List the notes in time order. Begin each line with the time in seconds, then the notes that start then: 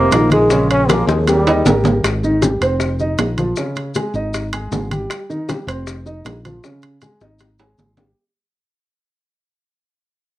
Already playing: A#3 A#4
0.11 A#1 D#3 D#4 F4, high bongo, low bongo, high conga, high timbale, low timbale, maracas
0.30 G#3 G#4, high bongo, high conga, high timbale, maracas
0.50 C#3 C#4 C#5, high bongo, high conga, maracas
0.69 C#4 C#5, high bongo, high conga, high timbale, maracas
0.89 F3 A#3 F4 G#4 A#4, high bongo, high conga, high timbale, low timbale, maracas
1.07 D#2 G#3 G#4, high bongo, high conga, maracas
1.27 G3 G4 A#4, high bongo, high conga, high timbale, maracas
1.46 D#3 D#4 D#5, high conga, high timbale, maracas
1.65 G#1 G3 G4 A#4, low bongo, high conga, low timbale, maracas
1.84 low bongo, high conga, low timbale, maracas
2.03 G#1, high bongo, high conga, high timbale, maracas
2.24 D#3 D#4, high bongo, high conga, maracas
2.42 G3 G4, high bongo, high conga, high timbale, low timbale, maracas
2.61 F1 C4 C5, high conga, high timbale, maracas
2.80 high bongo, high conga, maracas
2.99 D#4 D#5, high bongo, high conga, maracas
3.18 A#1, high bongo, low bongo, high conga, high timbale, low timbale, maracas
3.38 F3 F4, high bongo, high conga, high timbale, maracas
3.56 C#3 C#4, high bongo, high conga, maracas
3.76 high bongo, high conga, high timbale, maracas
3.95 G#3 G#4, high bongo, high conga, high timbale, low timbale, maracas
4.14 G#1 D#4 D#5, high conga, maracas
4.34 high bongo, high conga, high timbale, maracas
4.53 G#3 G#4, high bongo, high conga, high timbale, maracas
4.71 G#1, high bongo, low bongo, high conga, low timbale, maracas
4.91 G3 G4, high bongo, high conga, high timbale, maracas
5.10 high bongo, high conga, high timbale, maracas
5.29 D#3 D#4, high bongo, high conga, maracas
5.49 G3 G4, high bongo, high conga, high timbale, low timbale, maracas
5.67 F1 C4 C5, high conga, high timbale, maracas
5.87 high bongo, high conga, maracas
6.06 D#4 D#5, high bongo, high conga, maracas
6.25 A#1, high bongo, low bongo, high conga, high timbale, low timbale, maracas
6.45 F3 F4, high bongo, high conga, high timbale, maracas
6.64 C#3 C#4, high bongo, high conga, maracas
6.82 high bongo, high conga, high timbale, maracas
7.01 G#3 G#4, high bongo, high conga, high timbale, low timbale, maracas
7.21 G#1 D#4 D#5, high bongo, high conga, maracas
7.39 high bongo, high conga, high timbale, maracas
7.58 G#3 G#4, high bongo, high conga, high timbale, maracas
7.78 G#1, high conga, low timbale, maracas
7.97 G3 G4, low bongo, high conga, low timbale, maracas